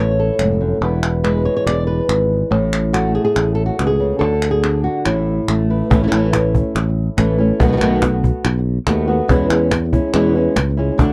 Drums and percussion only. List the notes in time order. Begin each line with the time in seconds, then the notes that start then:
0.39 clap
1.03 clap
1.25 clap
1.67 clap
2.09 clap
2.73 clap
2.94 clap
3.36 clap
3.79 clap
4.42 clap
4.64 clap
5.05 clap
5.48 clap
5.91 cajon bass
6.12 clap
6.33 cajon slap, clap
6.55 cajon bass
6.76 clap
7.18 cajon slap, clap
7.60 cajon bass
7.81 clap
8.02 cajon slap, clap
8.24 cajon bass
8.45 clap
8.87 cajon slap, clap
9.29 cajon bass
9.50 clap
9.71 cajon slap, clap
9.93 cajon bass
10.14 clap
10.56 cajon slap, clap
10.99 cajon bass